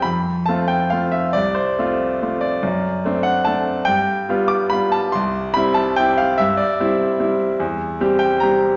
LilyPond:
\new Staff \with { instrumentName = "Grand piano" } { \time 3/4 \key c \major \tempo 4 = 144 << { b''4 a''8 g''8 f''8 e''8 | d''8 c''4. r8 d''8~ | d''4. fis''8 a''4 | g''4. d'''8 b''8 a''8 |
c'''4 b''8 a''8 g''8 f''8 | e''8 d''4. r4 | \key c \mixolydian r4. g''8 bes''4 | } \\ { f,4 <a c' f'>4 <a c' f'>4 | c,4 <a c' f'>4 <a c' f'>4 | fis,4 <a c' d'>4 <a c' d'>4 | g,4 <g b f'>4 <g b f'>4 |
c,4 <g c' e'>4 <g c' e'>4 | g,4 <g c' e'>4 <g c' e'>4 | e,4 <g c' g'>4 <g c' g'>4 | } >> }